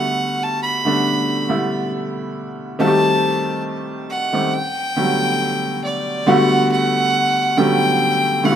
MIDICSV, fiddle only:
0, 0, Header, 1, 2, 480
1, 0, Start_track
1, 0, Key_signature, 1, "major"
1, 0, Tempo, 869565
1, 1538, Time_signature, 4, 2, 24, 8
1, 4723, End_track
2, 0, Start_track
2, 0, Title_t, "Fiddle"
2, 0, Program_c, 0, 110
2, 0, Note_on_c, 0, 78, 96
2, 239, Note_on_c, 0, 81, 97
2, 247, Note_off_c, 0, 78, 0
2, 344, Note_off_c, 0, 81, 0
2, 347, Note_on_c, 0, 83, 109
2, 1040, Note_off_c, 0, 83, 0
2, 1545, Note_on_c, 0, 81, 114
2, 1999, Note_off_c, 0, 81, 0
2, 2263, Note_on_c, 0, 78, 98
2, 2504, Note_on_c, 0, 79, 115
2, 2512, Note_off_c, 0, 78, 0
2, 3221, Note_off_c, 0, 79, 0
2, 3225, Note_on_c, 0, 74, 88
2, 3465, Note_on_c, 0, 78, 106
2, 3473, Note_off_c, 0, 74, 0
2, 3701, Note_off_c, 0, 78, 0
2, 3706, Note_on_c, 0, 78, 114
2, 4185, Note_on_c, 0, 79, 121
2, 4193, Note_off_c, 0, 78, 0
2, 4666, Note_on_c, 0, 78, 100
2, 4674, Note_off_c, 0, 79, 0
2, 4723, Note_off_c, 0, 78, 0
2, 4723, End_track
0, 0, End_of_file